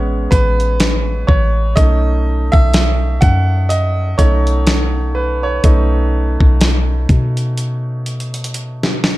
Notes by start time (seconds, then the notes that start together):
Already playing: A1 G#3 B3 C#4 C#5 D#5
0.31 A1 B4, kick, closed hi-hat
0.60 closed hi-hat
0.80 snare, closed hi-hat
1.27 A1 C#5, kick
1.76 B1 A3 C#4 D#4 D#5, kick, closed hi-hat
2.52 B1 E5, kick
2.74 snare, closed hi-hat
3.21 F#2 F#5, kick, closed hi-hat
3.69 D#5, closed hi-hat
4.18 B1 A3 C#4 D#4 C#5, kick, closed hi-hat
4.47 closed hi-hat
4.67 snare, closed hi-hat
5.15 B4
5.43 C#5
5.63 B1 A3 C#4 D#4, kick, closed hi-hat
6.41 B1, kick
6.61 snare, closed hi-hat
7.09 B2, kick, closed hi-hat
7.37 closed hi-hat
7.58 closed hi-hat
8.06 closed hi-hat
8.20 closed hi-hat
8.34 closed hi-hat
8.44 closed hi-hat
8.54 closed hi-hat
8.83 snare
9.04 snare